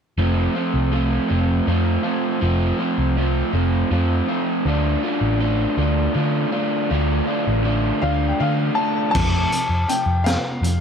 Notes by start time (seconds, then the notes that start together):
0.17 F1 F3 A3 C4 F4
0.55 A3 C4 F4
0.74 C2
0.91 F3 A3 C4 F4
1.28 F1 A3 C4 F4
1.67 F2 F3 A3 C4 F4
2.03 A3 C4 F4
2.41 F1 F3 A3 C4 F4
2.79 A3 C4 F4
2.98 C2
3.17 F3 A3 C4 F4
3.53 F1 A3 C4 F4
3.91 F2 F3 A3 C4 F4
4.28 A3 C4 F4
4.65 D2 D3 A3 D4 F4
5.03 A3 D4 F4
5.21 A1
5.40 D3 A3 D4 F4
5.77 D2 A3 D4 F4
6.15 D3 A3 D4 F4
6.52 A3 D4 F4
6.90 D2 D3 A3 D4 F4
7.27 A3 D4 F4
7.47 A1
7.64 D3 A3 D4 F4
8.02 D2 A3 D4 F4 F5
8.28 G5
8.39 D3 A3 D4 F4 F5
8.75 D4 F4 A5
8.79 A3
9.11 F2 C3 F3 A5, kick, crash
9.16 F2
9.51 F2 C3, closed hi-hat
9.69 F2
9.88 F2 C3 G5, closed hi-hat
10.06 F2
10.24 F2 C3 F5, snare, closed hi-hat
10.61 F2 C3, closed hi-hat